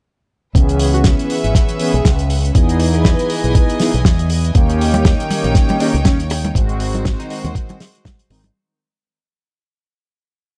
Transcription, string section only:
0.55 2.53 C#4 medium
0.55 2.53 B4 medium
0.55 2.53 E5 loud
2.54 4.53 E3 medium
2.54 4.53 D#5 medium
2.54 4.53 G#5 medium
4.55 6.53 D#4 medium
4.55 6.53 C#5 medium
4.55 6.53 G5 loud
6.55 8.53 G#3 medium
6.55 8.53 F#4 medium
6.55 8.53 C5 loud

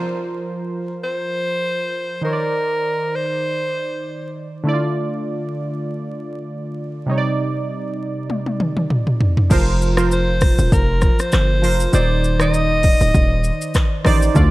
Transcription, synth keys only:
0.00 2.18 F3 medium
0.00 2.19 F4 medium
0.00 2.20 A#4 medium
0.00 2.21 C5 medium
2.21 4.61 D#3 medium
2.21 4.62 D#4 medium
2.21 4.63 C5 medium
2.26 2.32 C#5 medium
2.33 4.67 D5 medium
4.64 7.03 D3 medium
4.64 7.04 A3 medium
4.64 4.74 E4 medium
4.69 7.06 D5 medium
4.73 7.08 F4 medium
7.06 9.46 C3 medium
7.06 9.47 G3 medium
7.06 9.47 D#4 medium
7.11 7.17 C#5 medium
7.18 9.52 D5 medium
9.50 9.94 F3 medium
9.50 9.94 F4 medium
9.50 9.95 A#4 medium
9.50 9.95 C5 loud
9.97 11.09 F3 medium
9.97 11.09 F4 medium
9.97 11.10 A#4 medium
9.97 11.10 C5 medium
11.62 11.91 F3 medium
11.62 11.91 F4 medium
11.62 11.92 A#4 medium
11.62 11.92 C5 medium
11.92 12.36 D#3 medium
11.92 12.37 D#4 medium
11.92 12.37 C5 medium
11.92 12.37 D5 medium
12.39 13.51 D#3 medium
12.39 13.52 D#4 medium
12.39 13.52 C5 medium
12.39 13.53 D#5 medium
14.04 14.33 D#3 medium
14.04 14.34 D#4 medium
14.04 14.34 C5 medium
14.04 14.34 D5 loud
14.34 14.51 D3 medium
14.34 14.51 A3 medium
14.34 14.51 F4 medium
14.34 14.51 D5 loud

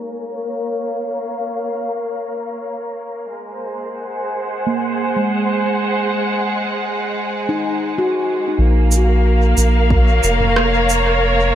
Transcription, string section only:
0.00 4.49 A#3 medium
0.00 0.15 G#4 medium
0.00 4.33 A#4 medium
0.00 3.31 C#5 medium
0.28 3.31 F5 medium
3.31 8.59 G#3 medium
3.50 8.58 C5 medium
3.56 9.44 G#4 medium
3.95 8.58 F#5 medium
8.59 11.55 A#3 loud
8.89 11.55 F5 medium
9.03 11.55 A#4 medium
9.93 11.55 C#5 medium

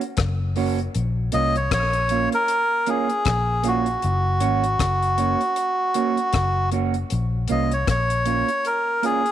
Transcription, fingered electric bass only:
0.19 0.87 F#1 medium
0.96 1.29 A#1 loud
1.34 1.68 C2 loud
1.72 2.26 A#1 medium
3.27 3.95 A#1 medium
4.04 4.43 F#1 loud
4.43 4.76 G#1 medium
4.80 5.34 F#1 loud
6.35 7.03 F#1 medium
7.12 7.46 A#1 loud
7.51 7.84 C2 medium
7.88 8.42 A#1 medium

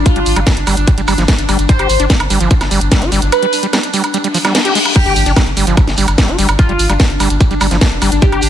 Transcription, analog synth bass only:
0.16 0.23 G1 medium
0.26 0.33 G#1 loud
0.36 0.43 G1 medium
0.57 0.64 G1 medium
0.67 0.74 G1 loud
0.77 0.84 G1 medium
0.98 1.05 G1 medium
1.08 1.15 G1 medium
1.18 1.25 G1 medium
1.38 1.46 G1 medium
1.49 1.56 G1 loud
1.59 1.66 G1 medium
1.79 1.86 G1 medium
1.89 1.97 G#1 loud
2.00 2.07 G1 medium
2.20 2.27 G1 medium
2.30 2.37 G1 loud
2.40 2.48 G1 loud
2.61 2.68 G1 medium
2.71 2.78 G1 loud
2.81 2.88 G1 medium
3.02 3.09 G1 medium
3.12 3.19 G1 loud
3.22 3.29 G1 loud
5.06 5.13 G1 medium
5.16 5.23 G#1 loud
5.26 5.33 G1 loud
5.47 5.54 G1 medium
5.57 5.64 G1 loud
5.67 5.74 G1 medium
5.87 5.95 G1 medium
5.98 6.05 G1 loud
6.08 6.15 G1 medium
6.28 6.35 F1 medium
6.38 6.46 G1 loud
6.49 6.56 G1 medium
6.69 6.76 G1 medium
6.79 6.86 G#1 loud
6.89 6.97 G1 loud
7.10 7.17 G1 medium
7.20 7.27 G1 loud
7.30 7.37 G1 medium
7.51 7.58 G1 medium
7.61 7.68 G1 loud
7.71 7.78 G1 medium
7.92 7.99 F1 medium
8.02 8.09 G1 loud
8.12 8.19 G1 medium
8.32 8.39 G1 medium
8.43 8.49 G#1 loud

